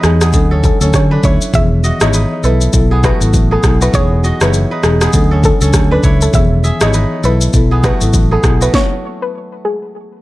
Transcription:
Already playing: kora B3 D#4 F#4 G#4 B4 C#5
0.03 fingered electric bass E2, marimba E3 B3 D#4 G#4, synth pluck G#4, cross-stick, shaker
0.21 kora B3 G#4, cross-stick, shaker
0.33 fingered electric bass D2, marimba F#3 C#4 D4 A4, kick, shaker
0.51 kora C#4 A4
0.64 synth pluck A4, kick, shaker
0.81 fingered electric bass D2, marimba F#3 C#4 D4 A4, kora C#4 A4, shaker
0.93 fingered electric bass D3, synth pluck C#5, kick, cross-stick, shaker
1.11 marimba F#3 C#4 D4 A4, kora D4 B4
1.23 fingered electric bass D2, kora E4 C#5, synth pluck C#5, kick, shaker
1.41 shaker
1.53 fingered electric bass E1, marimba D#3 E3 B3 G#4, synth pluck E5, kick, shaker
1.84 kora F#4 D#5, shaker
2.01 fingered electric bass G#1, marimba E3 B3 D#4 G#4, kora E4 C#5, synth pluck D#5, cross-stick, shaker
2.13 kora D#4 B4, shaker
2.43 fingered electric bass B1, marimba F#3 B3 E4 A4, kora E4 A4, synth pluck B4, shaker
2.61 shaker
2.73 fingered electric bass B1, marimba F#3 B3 E4 A4, kick, shaker
2.91 kora B3 G#4
3.04 kora A3 F#4, synth pluck B4, kick, cross-stick, shaker
3.21 fingered electric bass G#1, marimba F#3 B3 E4 A4, shaker
3.33 fingered electric bass A1, kick, shaker
3.51 kora B3 G#4, synth pluck A4
3.63 fingered electric bass B1, marimba F#3 B3 E4 A4, kick, cross-stick, shaker
3.81 kora A3 F#4, synth pluck B4, shaker
3.93 fingered electric bass E1, marimba E3 B3 D#4 G#4, kora B3 G#4, synth pluck C#5, kick, shaker
4.24 kora F#4 D#5, shaker
4.41 fingered electric bass F#1, marimba E3 B3 D#4 G#4, kora E4 C#5, synth pluck B4, cross-stick, shaker
4.53 shaker
4.71 kora D#4 B4
4.83 fingered electric bass E1, marimba E3 B3 D#4 G#4, synth pluck G#4, cross-stick, shaker
5.01 kora B3 G#4, cross-stick, shaker
5.13 fingered electric bass D2, marimba F#3 C#4 D4 A4, kick, shaker
5.31 kora C#4 A4
5.44 synth pluck A4, kick, shaker
5.61 fingered electric bass C#2, marimba F#3 C#4 D4 A4, kora C#4 A4, shaker
5.73 fingered electric bass D2, kick, cross-stick, shaker
5.91 marimba F#3 C#4 D4 A4, kora D4 B4, synth pluck B4
6.03 fingered electric bass C#2, kora E4 C#5, kick, shaker
6.21 synth pluck A4, shaker
6.33 fingered electric bass E1, marimba D#3 E3 B3 G#4, synth pluck E5, kick, shaker
6.64 kora G#4 E5, shaker
6.81 fingered electric bass G#1, marimba E3 B3 D#4 G#4, kora E4 C#5, synth pluck D#5, cross-stick, shaker
6.93 kora D#4 B4, shaker
7.23 fingered electric bass B1, marimba F#3 B3 E4 A4, kora E4 A4, synth pluck B4, shaker
7.41 shaker
7.53 fingered electric bass B1, marimba F#3 B3 E4 A4, kick, shaker
7.71 kora B3 G#4
7.84 kora A3 F#4, synth pluck B4, kick, cross-stick, shaker
8.01 fingered electric bass G#1, marimba F#3 B3 E4 A4, shaker
8.13 fingered electric bass A1, kick, shaker
8.31 kora B3 G#4, synth pluck A4
8.43 fingered electric bass B1, marimba F#3 B3 E4 A4, kick, cross-stick, shaker
8.61 kora A3 F#4, synth pluck B4, shaker
8.74 synth pluck C#5, kick, snare
9.22 synth pluck B4
9.65 synth pluck G#4

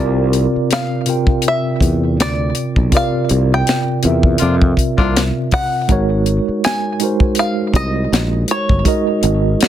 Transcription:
Already playing: fretless electric bass C2, tine electric piano C3 C4 F4 A#4 D5
0.33 closed hi-hat
0.56 muted fretless electric bass stroke
0.71 five-string banjo F5, snare, closed hi-hat
1.05 tine electric piano C3 C4 F4 A#4, closed hi-hat
1.10 tine electric piano G5
1.27 kick
1.42 closed hi-hat
1.48 five-string banjo E5
1.81 fretless electric bass E2, kick, closed hi-hat
2.20 fretless electric bass D2, five-string banjo D5, snare, closed hi-hat
2.55 closed hi-hat
2.76 fretless electric bass B1, kick
2.90 tine electric piano C3 C4 F4 A#4, kick, closed hi-hat
2.95 tine electric piano D5, five-string banjo F5
3.29 fretless electric bass C2, closed hi-hat
3.54 five-string banjo G5
3.67 snare, closed hi-hat
4.02 fretless electric bass E2, tine electric piano C3 C4 F4 A#4, closed hi-hat
4.07 tine electric piano E5
4.23 kick
4.38 fretless electric bass F2, horn section A#3 D4 F4, closed hi-hat
4.62 kick
4.77 kick, closed hi-hat
4.98 fretless electric bass C2, horn section A#3 D4 F4, kick
5.17 snare, closed hi-hat
5.51 five-string banjo F#5, kick, open hi-hat
5.88 fretless electric bass G#1, tine electric piano G#3 D#4 F#4 A#4, kick, closed hi-hat
5.92 tine electric piano C#5
6.26 closed hi-hat
6.49 muted fretless electric bass stroke
6.64 five-string banjo G#5, snare, closed hi-hat
7.00 tine electric piano G#3 D#4 F#4 A#4, closed hi-hat
7.04 tine electric piano C5
7.20 kick
7.35 closed hi-hat
7.39 five-string banjo F5
7.74 fretless electric bass C2, five-string banjo D#5, kick, closed hi-hat
8.12 fretless electric bass A#1, snare, closed hi-hat
8.48 five-string banjo C#5, closed hi-hat
8.69 fretless electric bass G1, kick
8.84 tine electric piano G#3 D#4 F#4 A#4, kick, closed hi-hat
8.88 tine electric piano D#5
9.23 fretless electric bass G#1, closed hi-hat
9.61 snare, closed hi-hat

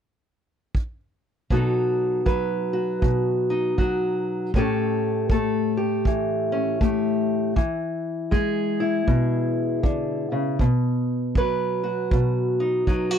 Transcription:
0.75 kick
1.50 steel-string acoustic guitar B2 F#3 D#4 F#4 A4, kick
2.26 steel-string acoustic guitar F#3 B4, kick
2.73 steel-string acoustic guitar F#4
3.02 steel-string acoustic guitar B2, kick
3.50 steel-string acoustic guitar D#4
3.78 steel-string acoustic guitar F#3 F#4, kick
4.54 steel-string acoustic guitar A2 A3 C#4 G4, kick
4.58 steel-string acoustic guitar A4
5.30 steel-string acoustic guitar A3 A4, kick
5.77 steel-string acoustic guitar G4
6.05 steel-string acoustic guitar E3, kick
6.52 steel-string acoustic guitar C#4
6.81 steel-string acoustic guitar A3 G4, kick
7.56 steel-string acoustic guitar E3, kick
8.31 steel-string acoustic guitar G#3 G#4, kick
8.80 steel-string acoustic guitar E4
9.07 steel-string acoustic guitar B2, kick
9.83 steel-string acoustic guitar D3, kick
10.32 steel-string acoustic guitar C#3
10.59 steel-string acoustic guitar B2, kick
11.35 steel-string acoustic guitar F#3 B4, kick
11.83 steel-string acoustic guitar F#4
12.11 steel-string acoustic guitar B2, kick
12.60 steel-string acoustic guitar D#4
12.87 steel-string acoustic guitar F#3 D#4, kick
13.11 steel-string acoustic guitar F#4

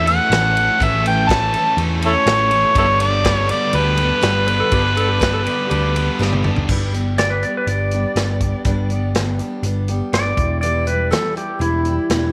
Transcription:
Already playing: picked electric bass E2, overdriven electric guitar E3
0.06 steel-string acoustic guitar A3 C#4 A4, harmonica F#5, ride
0.30 picked electric bass A1, steel-string acoustic guitar A2 E3 A3, snare, ride
0.34 steel-string acoustic guitar C#4 A4
0.57 steel-string acoustic guitar A3 C#4 A4, ride
0.80 picked electric bass A1, steel-string acoustic guitar A2 E3 A3 C#4 A4, harmonica E5, kick, ride
1.05 steel-string acoustic guitar A3 C#4 A4, harmonica G5, ride
1.27 steel-string acoustic guitar A2, overdriven electric guitar E3, harmonica A5, kick, ride
1.31 steel-string acoustic guitar E3 A3 C#4 A4, snare
1.53 overdriven electric guitar A2 E3 C#4, steel-string acoustic guitar A4, ride
1.57 steel-string acoustic guitar A3 C#4
1.77 picked electric bass E2, steel-string acoustic guitar E3 A3, ride
1.82 steel-string acoustic guitar C#4 A4
2.02 overdriven electric guitar A3, steel-string acoustic guitar C#4 A4, harmonica E4 A4 C#5, ride
2.07 steel-string acoustic guitar A3
2.26 picked electric bass A1, steel-string acoustic guitar A2 E3 A3 C#4 A4, snare, ride
2.51 steel-string acoustic guitar C#4 A4, ride
2.55 steel-string acoustic guitar A3
2.74 picked electric bass G1, overdriven electric guitar G2 D3 G4, steel-string acoustic guitar G3 B3 D4, kick, ride
2.78 harmonica E4 A4 C#5, steel-string acoustic guitar A4
3.00 overdriven electric guitar G3 G4, steel-string acoustic guitar B3 D4 A4, harmonica D5, ride
3.24 steel-string acoustic guitar G3 B3 D4 A4, overdriven electric guitar G4, kick, snare, ride
3.35 harmonica C#5
3.49 overdriven electric guitar G2 D3 G3 G4, steel-string acoustic guitar B3 D4 A4, harmonica D5, ride
3.73 picked electric bass D2, steel-string acoustic guitar G3 B3 D4, harmonica B4, ride
3.77 overdriven electric guitar G4, steel-string acoustic guitar A4
3.97 overdriven electric guitar G3 G4, steel-string acoustic guitar B3 D4 A4, ride
4.21 picked electric bass G1, overdriven electric guitar G2 D3 G4, steel-string acoustic guitar G3 B3 D4 A4, snare, ride
4.46 overdriven electric guitar G3 G4, steel-string acoustic guitar B3 D4 A4, electric slide guitar B4, ride
4.60 electric slide guitar A4
4.71 picked electric bass G1, overdriven electric guitar G2 D3 G4, steel-string acoustic guitar G3 B3 D4 A4, electric slide guitar G4, kick, ride
4.83 electric slide guitar B4
4.95 steel-string acoustic guitar B3 D4 A4, overdriven electric guitar G4, electric slide guitar A4, ride
4.99 overdriven electric guitar G3
5.09 electric slide guitar G4
5.19 steel-string acoustic guitar G3 B3 D4 A4, electric slide guitar B4, kick, snare, ride
5.24 overdriven electric guitar G4
5.33 electric slide guitar A4
5.44 overdriven electric guitar G2 D3 G3 G4, steel-string acoustic guitar B3 D4 A4, electric slide guitar G4, ride
5.70 picked electric bass D2, steel-string acoustic guitar G3 B3 D4 A4, electric slide guitar G4, overdriven electric guitar G4, ride
5.95 overdriven electric guitar G3 G4, steel-string acoustic guitar B3 D4 A4, ride
6.19 picked electric bass G1, overdriven electric guitar G2 D3 G4, steel-string acoustic guitar G3 B3 D4 A4, snare
6.33 high tom
6.43 overdriven electric guitar G3 G4, steel-string acoustic guitar B3 D4 A4, mid tom
6.56 floor tom
6.68 picked electric bass G1, steel-string acoustic guitar G2 D3 G3 B3 D4 G4, kick, crash
6.92 steel-string acoustic guitar G3 B3 D4 G4, closed hi-hat
7.18 steel-string acoustic guitar G2 D3 G3 B3 D4 G4, electric slide guitar D5, snare, closed hi-hat
7.30 electric slide guitar B4
7.42 steel-string acoustic guitar G3 B3 D4 G4, electric slide guitar D5, closed hi-hat
7.57 electric slide guitar B4
7.67 picked electric bass G1, steel-string acoustic guitar G3 B3 D4 G4, electric slide guitar D5, closed hi-hat
7.91 steel-string acoustic guitar B3 D4 G4, closed hi-hat
7.96 steel-string acoustic guitar G3
8.16 picked electric bass G1, steel-string acoustic guitar G2 D3 G3 B3 D4, snare, closed hi-hat
8.20 steel-string acoustic guitar G4
8.41 steel-string acoustic guitar G3 B3 D4 G4, kick, closed hi-hat
8.65 picked electric bass G1, steel-string acoustic guitar G2 D3 G3 B3 D4 G4, kick, closed hi-hat
8.90 steel-string acoustic guitar G3 B3 D4 G4, closed hi-hat
9.15 steel-string acoustic guitar G2 D3 G3 B3 D4 G4, snare, closed hi-hat
9.39 steel-string acoustic guitar G3 B3 D4 G4, closed hi-hat
9.63 picked electric bass G1, steel-string acoustic guitar G3 B3 D4, closed hi-hat
9.68 steel-string acoustic guitar G4
9.88 steel-string acoustic guitar G3 B3 D4 G4, closed hi-hat
10.13 picked electric bass G1, steel-string acoustic guitar G2 D3 G3 B3 D4 G4, electric slide guitar D5, snare, closed hi-hat
10.37 picked electric bass E1, steel-string acoustic guitar E3 G3 E4 G4, kick, closed hi-hat
10.61 steel-string acoustic guitar E2 B2 E3 G3 E4 G4, electric slide guitar D5, closed hi-hat
10.85 steel-string acoustic guitar E3 G3 E4 G4, electric slide guitar B4, closed hi-hat
11.11 steel-string acoustic guitar E2 B2 E3 G3 E4 G4, electric slide guitar A4, snare, closed hi-hat
11.34 steel-string acoustic guitar E3 G3 E4 G4, electric slide guitar G4, closed hi-hat
11.59 picked electric bass E1, steel-string acoustic guitar E3 G3 E4 G4, electric slide guitar E4, closed hi-hat
11.85 steel-string acoustic guitar E3 G3 E4 G4, closed hi-hat
12.10 picked electric bass E1, steel-string acoustic guitar E2 B2 E3 G3 E4 G4, snare, closed hi-hat

